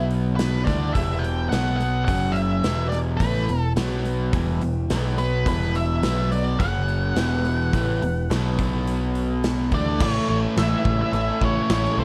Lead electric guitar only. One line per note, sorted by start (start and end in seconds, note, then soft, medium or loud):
0.36 0.67 B4 medium
0.64 0.93 D5 medium
0.94 1.24 E5 medium
1.19 1.47 G5 medium
1.49 1.75 F#5 medium
1.76 2.04 F#5 medium
2.05 2.36 F#5 medium
2.32 2.87 E5 medium
2.89 2.97 D5 medium
3.17 3.59 B4 medium
3.59 3.71 A4 medium
5.19 5.47 B4 medium
5.48 5.77 B4 medium
5.76 6.31 E5 medium
6.32 6.61 D5 medium
6.59 9.39 F#5 loud
9.74 10.02 D5 medium
10.02 10.28 C#5 loud
10.29 10.37 C#5 loud
10.59 11.00 E5 medium
11.02 11.44 E5 loud
11.45 11.70 C#5 medium
11.74 11.99 C#5 medium
12.00 12.04 C5 medium